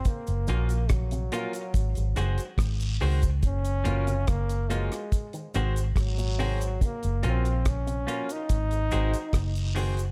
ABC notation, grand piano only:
X:1
M:4/4
L:1/16
Q:1/4=71
K:Abmix
V:1 name="Grand piano"
z2 [FGB] z3 [FGB] [GB] z [Ac] [GAc] z3 [GAc] z | z2 [FGB] z3 [FGB] [GB] z [Ac] [GAc] z3 [GAc] z | z2 [FGB] z3 [FGB] [GB] z [Ac] [GAc] z3 [GAc] z |]